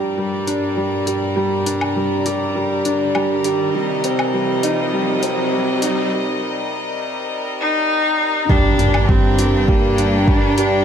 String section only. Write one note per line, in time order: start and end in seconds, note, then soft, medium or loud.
0.00 3.71 G2 medium
0.00 8.46 G3 medium
0.00 8.46 A#4 medium
0.00 3.71 D5 medium
3.74 8.46 C3 medium
3.74 8.46 D#5 medium
8.50 10.85 D4 medium
8.50 10.85 G4 medium
8.50 10.85 A#4 medium
8.50 10.85 G5 medium